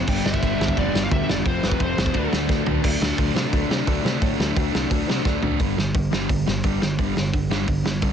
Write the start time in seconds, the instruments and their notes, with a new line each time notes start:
0.07 picked electric bass G1, overdriven electric guitar G2 D3 G3 B3 D4, lead electric guitar G5, kick, crash
0.25 picked electric bass G1, lead electric guitar E5, snare
0.34 kick
0.43 picked electric bass G1, kick, ride
0.60 picked electric bass G1, overdriven electric guitar G2 D3 G3, snare
0.68 kick
0.76 picked electric bass F1, distorted electric guitar G2 D3 G3, lead electric guitar D5, kick, ride
0.94 picked electric bass G1, snare
1.05 lead electric guitar F5
1.11 picked electric bass D2, lead electric guitar E5, kick, ride
1.29 picked electric bass F1, lead electric guitar D5, snare
1.45 picked electric bass F1, overdriven electric guitar F2 C3 F3 A3 C4, lead electric guitar C5, kick, ride
1.63 picked electric bass F1, lead electric guitar B4, snare
1.72 kick
1.80 picked electric bass F1, lead electric guitar C5, kick, ride
1.97 picked electric bass F1, overdriven electric guitar F2 C3 F3, snare
2.06 kick
2.14 picked electric bass D2, overdriven electric guitar D3 F#3 A3 D4, kick, ride
2.33 picked electric bass D2, snare
2.49 picked electric bass D2, kick, snare
2.65 picked electric bass D2, overdriven electric guitar D3 A3 D4, floor tom
2.84 picked electric bass D2, overdriven electric guitar D3 F#3 A3 D4, kick, crash
3.01 picked electric bass D2, overdriven electric guitar D3 F#3 A3 D4, snare
3.17 picked electric bass D2, overdriven electric guitar D3 F#3 A3 D4, kick, open hi-hat
3.35 picked electric bass C3, overdriven electric guitar D3 F#3 A3 D4, snare
3.52 picked electric bass D2, overdriven electric guitar D3 F#3 A3 D4, kick, open hi-hat
3.69 picked electric bass C3, overdriven electric guitar D3 F#3 A3 D4, snare
3.86 picked electric bass D2, overdriven electric guitar D3 F#3 A3 D4, kick, open hi-hat
4.04 picked electric bass C3, overdriven electric guitar D3 F#3 A3 D4, snare
4.20 picked electric bass A2, overdriven electric guitar D3 F#3 A3 D4, kick, open hi-hat
4.37 picked electric bass D2, overdriven electric guitar D3 F#3 A3 D4, snare
4.55 picked electric bass D2, overdriven electric guitar D3 F#3 A3 D4, kick, open hi-hat
4.72 picked electric bass C2, overdriven electric guitar D3 F#3 A3 D4, snare
4.90 picked electric bass D2, overdriven electric guitar D3 F#3 A3 D4, kick, open hi-hat
5.07 picked electric bass C3, overdriven electric guitar D3 F#3 A3 D4, snare
5.25 picked electric bass D2, overdriven electric guitar D3 F#3 A3 D4, kick, snare
5.43 picked electric bass D2, overdriven electric guitar D3 F#3 A3 D4, floor tom
5.59 picked electric bass G1, overdriven electric guitar G2 D3 G3, kick, open hi-hat
5.77 overdriven electric guitar G2 D3, snare
5.94 picked electric bass G1, overdriven electric guitar G2 D3, kick, open hi-hat
6.13 picked electric bass G1, overdriven electric guitar G2 D3 G3, snare
6.29 picked electric bass G1, overdriven electric guitar G2 D3, kick, open hi-hat
6.46 picked electric bass G1, overdriven electric guitar G2 D3, snare
6.63 picked electric bass G1, overdriven electric guitar G2 D3 G3, kick, open hi-hat
6.82 picked electric bass G1, overdriven electric guitar G2 D3, snare
6.98 picked electric bass G1, overdriven electric guitar G2 D3 G3, kick, open hi-hat
7.15 picked electric bass G1, overdriven electric guitar G2 D3, snare
7.33 picked electric bass G1, overdriven electric guitar G2 D3, kick, open hi-hat
7.50 overdriven electric guitar G2 D3 G3, snare
7.68 picked electric bass G1, overdriven electric guitar G2 D3, kick, open hi-hat
7.85 picked electric bass G1, overdriven electric guitar G2 D3, snare
8.02 picked electric bass C#2, overdriven electric guitar G2 D3 G3, kick, open hi-hat